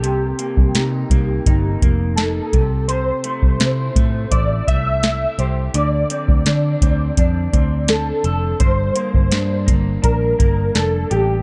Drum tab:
HH |x-x-x-x-x-x-x-x-|x-x-x-x-x-x-x-x-|x-x-x-x-x-x-x-x-|x-x-x-x-x-x-x-x-|
SD |----o-------o---|----o-------o---|----o-------o---|----o-------o---|
BD |---o--o-o-o---o-|---o--o-o-o-----|---o--o-o-o-----|o--o--o-o-o-----|